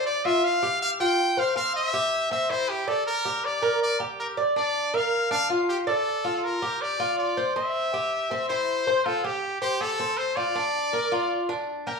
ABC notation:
X:1
M:4/4
L:1/8
Q:1/4=160
K:F
V:1 name="Trumpet"
d e f2 f g2 f | f e3 e c G A | B2 d2 d z B z | d2 f2 f z G A- |
A2 B2 d2 d2 | e4- e c3 | A G2 G A2 c d- | d4- d z2 B |]
V:2 name="Cuban tres"
d F2 G2 F2 c | C2 G2 C E2 d- | d G2 B2 G2 d | D2 B2 D F2 d- |
d F2 G2 F2 c | C2 G2 C E2 c | F G2 c G C2 F | D2 B F2 D2 G |]